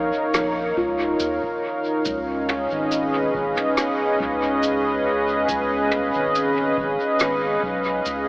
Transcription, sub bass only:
0.00 0.12 A#1 medium
0.34 0.72 A#1 medium
0.77 1.15 C#2 medium
1.20 1.41 D#2 medium
2.06 2.67 C#2 loud
2.72 3.30 G#1 loud
3.34 3.55 G#1 medium
4.20 5.45 C#2 loud
5.49 6.10 C#2 loud
6.15 6.74 G#1 loud
6.77 6.98 G#1 medium
7.20 7.58 G#1 medium
7.63 8.01 B1 medium
8.06 8.28 C#2 medium

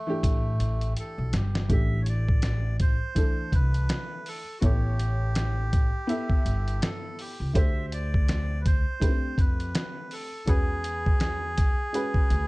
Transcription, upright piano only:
0.07 1.27 E3 medium
0.07 1.27 A3 medium
0.07 1.27 D4 medium
0.07 1.28 G4 loud
1.69 2.92 E3 medium
1.69 2.93 A3 medium
1.69 2.93 D4 medium
1.69 2.94 G4 medium
3.15 4.39 E3 medium
3.15 4.39 A3 medium
3.15 4.39 D4 medium
3.15 4.40 A4 medium
4.61 5.85 B3 medium
4.61 5.85 E4 medium
4.61 5.86 A4 medium
4.61 5.86 C#5 medium
6.07 7.31 B3 medium
6.07 7.31 E4 medium
6.07 7.32 A4 medium
6.07 7.32 E5 loud
7.53 8.77 A3 medium
7.53 8.78 D4 medium
7.53 8.78 G4 medium
7.53 8.79 C5 medium
9.00 10.24 A3 medium
9.00 10.24 D4 medium
9.00 10.25 G4 medium
9.00 9.10 B4 medium
9.09 10.28 C4 medium
10.46 11.70 G#3 medium
10.46 11.70 C#4 medium
10.46 11.71 F#4 medium
10.46 11.71 B4 medium
11.93 12.48 G#3 medium
11.93 12.48 C#4 medium
11.93 12.48 F#4 medium
11.93 12.48 B4 medium

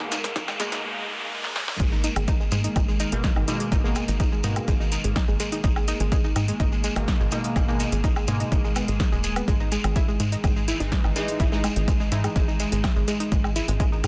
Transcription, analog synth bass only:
1.80 2.10 G#1 loud
2.16 2.46 G#1 loud
2.52 2.68 G#2 loud
2.76 3.06 G#1 loud
3.12 3.28 G#1 medium
3.36 3.44 G#1 medium
3.72 4.02 G#1 loud
4.08 4.38 G#1 loud
4.44 4.60 G#2 loud
4.68 4.98 G#1 loud
5.04 5.20 G#1 medium
5.28 5.36 G#1 medium
5.64 5.94 G#1 loud
6.00 6.30 G#1 loud
6.36 6.52 G#2 loud
6.60 6.90 G#1 loud
6.96 7.12 G#1 medium
7.20 7.28 G#1 medium
7.56 7.86 G#1 loud
7.92 8.22 G#1 loud
8.28 8.44 G#2 loud
8.52 8.82 G#1 loud
8.88 9.04 G#1 medium
9.12 9.42 D#1 loud
9.48 9.78 G#1 loud
9.84 10.14 G#1 loud
10.20 10.36 G#2 loud
10.44 10.74 G#1 loud
10.80 10.96 G#1 medium
11.04 11.12 G#1 medium
11.40 11.70 G#1 loud
11.76 12.06 G#1 loud
12.12 12.28 G#2 loud
12.36 12.66 G#1 loud
12.72 12.88 G#1 medium
12.96 13.04 G#1 medium
13.32 13.62 G#1 loud
13.68 13.98 G#1 loud
14.04 14.07 G#2 loud

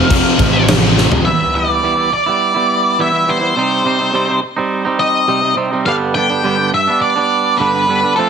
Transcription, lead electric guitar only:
0.00 0.64 F5 medium
1.25 1.55 E5 loud
1.55 2.12 D5 medium
2.13 3.01 D5 medium
3.01 3.29 E5 loud
3.29 4.39 C5 medium
5.00 5.53 D#5 loud
5.86 5.94 F5 medium
6.15 6.69 G5 loud
6.74 7.00 E5 medium
7.01 7.61 D5 medium
7.58 8.12 B4 medium
8.16 8.29 A4 medium

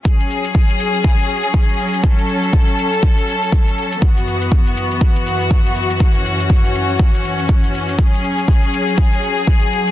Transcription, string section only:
0.05 3.98 F#3 medium
0.05 3.98 C#4 medium
0.05 2.02 G#4 medium
2.03 4.00 A4 medium
4.02 7.95 F#2 medium
4.02 7.95 E3 medium
4.02 5.98 B3 medium
4.02 7.95 F#4 medium
6.00 9.91 C#4 medium
7.98 9.91 F#3 medium
7.98 9.91 G#4 medium

